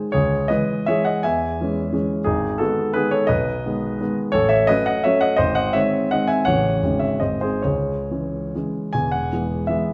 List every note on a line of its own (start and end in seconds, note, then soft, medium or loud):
0.00 0.10 G#4 soft
0.12 0.50 C#2 medium
0.12 0.48 G#4 medium
0.12 0.50 C#5 medium
0.48 0.84 E3 soft
0.48 0.85 G#3 soft
0.48 0.85 G#4 soft
0.48 0.85 B4 medium
0.48 0.87 D#5 medium
0.86 1.22 E3 soft
0.86 1.22 G#3 soft
0.86 1.22 G#4 soft
0.86 1.06 C#5 medium
0.86 1.06 E5 medium
1.05 1.24 D#5 medium
1.05 1.24 F#5 medium
1.23 1.60 E2 soft
1.23 2.05 E5 medium
1.23 2.09 G#5 medium
1.61 1.91 E3 soft
1.61 1.91 G#3 soft
1.61 1.91 C#4 soft
1.93 2.22 E3 soft
1.93 2.23 G#3 soft
1.93 2.23 C#4 soft
2.24 2.59 G#1 medium
2.24 2.58 D#4 medium
2.24 2.60 G#4 medium
2.58 2.92 D#3 soft
2.58 2.92 G#3 soft
2.58 2.92 B3 soft
2.58 2.93 F#4 medium
2.58 2.94 A4 medium
2.94 3.26 D#3 soft
2.94 3.26 G#3 soft
2.94 3.26 B3 soft
2.94 3.11 G#4 medium
2.94 3.11 B4 medium
3.11 3.28 A4 medium
3.11 3.28 C#5 medium
3.27 3.64 B1 medium
3.27 4.13 B4 medium
3.27 4.16 D#5 medium
3.66 3.97 D#3 soft
3.66 3.98 G#3 soft
3.66 3.98 B3 soft
4.00 4.31 D#3 soft
4.00 4.31 G#3 soft
4.00 4.31 B3 soft
4.32 4.68 A1 medium
4.32 4.49 A4 medium
4.32 4.49 C#5 medium
4.49 4.67 C#5 medium
4.49 4.68 E5 medium
4.67 5.02 F#3 soft
4.67 5.02 A3 soft
4.67 5.02 C#4 soft
4.67 4.86 B4 medium
4.67 4.85 D#5 medium
4.86 5.04 D#5 medium
4.86 5.04 F#5 medium
5.04 5.36 F#3 soft
5.04 5.36 A3 soft
5.04 5.36 C#4 soft
5.04 5.21 C#5 medium
5.04 5.21 E5 medium
5.21 5.35 D#5 medium
5.21 5.38 F#5 medium
5.36 5.74 G#1 medium
5.36 5.55 C5 medium
5.36 5.54 D#5 medium
5.55 5.73 D#5 medium
5.55 5.74 F#5 medium
5.73 6.08 D#3 soft
5.73 6.09 G#3 soft
5.73 6.09 C4 soft
5.73 6.09 C#5 medium
5.73 6.11 E5 medium
6.11 6.43 D#3 soft
6.11 6.43 G#3 soft
6.11 6.43 C4 soft
6.11 6.28 D#5 medium
6.11 6.29 F#5 medium
6.27 6.44 E5 medium
6.27 6.45 G#5 medium
6.45 6.81 A1 soft
6.45 6.79 C#3 soft
6.45 6.79 E3 soft
6.45 6.79 C#4 soft
6.45 6.97 C#5 medium
6.45 7.01 F#5 medium
6.83 7.20 G#1 soft
6.83 7.18 C#3 soft
6.83 7.18 G#3 soft
6.83 7.19 C#4 soft
6.99 7.19 C#5 soft
6.99 7.21 E5 medium
7.20 7.63 G#1 soft
7.20 7.60 D#3 soft
7.20 7.60 G#3 soft
7.20 7.61 C4 soft
7.20 7.40 C5 soft
7.20 7.41 D#5 medium
7.41 7.62 G#4 soft
7.41 7.63 C5 medium
7.62 8.09 C#2 soft
7.62 8.71 G#4 soft
7.62 8.74 C#5 medium
8.11 8.51 E3 soft
8.11 8.51 G#3 soft
8.11 8.51 C#4 soft
8.55 8.91 E3 soft
8.55 8.91 G#3 soft
8.55 8.91 C#4 soft
8.93 9.31 E1 soft
8.93 9.31 E2 soft
8.93 9.12 G#5 medium
9.12 9.67 F#5 medium
9.33 9.65 E3 soft
9.33 9.65 G#3 soft
9.33 9.65 B3 soft
9.67 9.93 E3 soft
9.67 9.93 G#3 soft
9.67 9.93 B3 soft
9.67 9.93 E5 medium